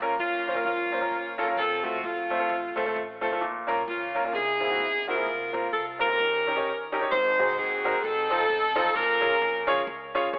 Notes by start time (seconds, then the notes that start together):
Already playing: A#2
0.00 C#2 A#3 C#4 F4 A#4
0.19 D#2 A#3 C#4 F4
0.48 A#3 C#4 F4 C5
0.55 A#3 C#4 F4 A#4
0.65 C#2 A#3 C#4 F4
0.92 A#3 C#4 F4 C5
1.01 A#3 C#4 F4 A#4
1.11 F#1
1.38 A#3 C#4 F4 A4
1.47 A#3 C#4 F4 A#4
1.57 F1 C4 F4 A4
1.83 C2 A3 C4 F4 F#4 A4
2.04 A#1 A3 C4 F4
2.30 A3 C4 F4 C5
2.40 A3 C4 F4 A4
2.49 A1
2.76 C2 A3 C4 F4 A4
2.85 A3 C4 F4 A4
2.96 A1
3.21 A3 C4 F4 A4
3.32 A3 C4 F4 A4
3.41 A#1 A#2
3.67 C2 A#3 C#4 F4 A#4
3.88 C#2 A#3 C#4 F4
4.15 A#3 C#4 F4 A#4
4.24 A#3 C#4 F4 A#4
4.33 C2 C3 D#4 E4 G#4
4.60 A#3 C4 E4 G#4
4.70 A#3 C4 E4 F#4
4.80 F#1
5.07 A#3 C4 E4 F4 F#4 A#4
5.16 A#3 C4 E4 G#4
5.26 F1
5.53 A#1 A#3 C4 F4 A#4
5.73 C2 A4
5.99 A#3 C4 C#4 F4 G4 A#4
6.09 A#3 C4 F4 A#4
6.19 D#2 D#3
6.47 C#4 D#4 G4 A#4
6.56 C#4 D#4 G4 C#5
6.92 C#4 D#4 G4 A#4
7.01 C#4 D#4 G4 C#5
7.12 G#1 G#2 D#4 F#4 C5
7.39 C2 C4 D#4 F#4 G#4
7.58 D#2 C4 D#4 G#4
7.85 C4 D#4 F#4 A#4
8.03 F1 C4 D#4 A4
8.30 C4 D#4 F4 A4
8.50 A1
8.76 C4 D#4 F4 A4
8.94 A#1 A#2 C#4 F4 A#4
9.21 C#2 C#4 F4 G#4 A#4
9.42 F2
9.67 C#4 F4 G#4 C#5
9.87 C#2
10.15 C#4 F4 G#4 C#5
10.33 C#2 G#4 C#5